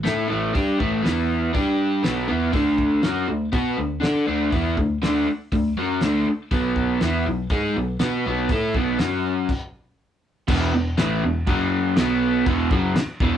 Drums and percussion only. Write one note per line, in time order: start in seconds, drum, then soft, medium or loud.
0.05 snare loud
0.05 open hi-hat medium
0.55 kick loud
0.55 open hi-hat medium
0.80 kick medium
1.05 snare loud
1.05 open hi-hat medium
1.55 kick loud
1.55 open hi-hat medium
2.04 snare loud
2.04 open hi-hat medium
2.53 kick loud
2.53 open hi-hat medium
2.78 kick medium
3.03 snare loud
3.03 open hi-hat soft
3.53 kick loud
3.53 open hi-hat medium
4.03 snare loud
4.03 open hi-hat medium
4.52 kick loud
4.52 open hi-hat medium
4.77 kick medium
5.03 snare loud
5.03 open hi-hat medium
5.52 kick loud
5.52 open hi-hat medium
6.01 snare loud
6.01 open hi-hat medium
6.51 kick loud
6.51 open hi-hat medium
6.76 kick medium
7.01 snare loud
7.01 open hi-hat medium
7.50 kick loud
7.50 open hi-hat medium
7.99 snare loud
7.99 open hi-hat medium
8.49 kick loud
8.49 open hi-hat medium
8.74 kick medium
8.99 snare loud
8.99 open hi-hat medium
9.49 kick loud
9.49 crash medium
10.48 kick loud
10.48 crash loud
10.48 crash medium
10.98 snare loud
10.98 crash medium
11.47 kick loud
11.47 crash medium
11.96 snare loud
11.96 crash medium
12.46 kick loud
12.46 crash medium
12.71 kick loud
12.96 snare loud
12.96 crash medium
13.20 kick loud